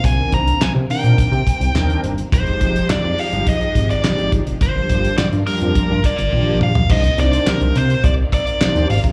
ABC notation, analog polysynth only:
X:1
M:4/4
L:1/16
Q:1/4=105
K:Cm
V:1 name="Analog polysynth"
z [E,CDB]3 z2 [E,CDB]3 z3 [E,CDB]3 z | z [F,A,EG]3 z2 [F,A,EG]3 z3 [F,A,EG]3 z | z [F,B,DG]3 z2 [F,B,DG]3 z3 [F,B,DG]3 z | [B,DEGc] z [B,DEGc]4 z6 [B,DEGc]2 z2 |]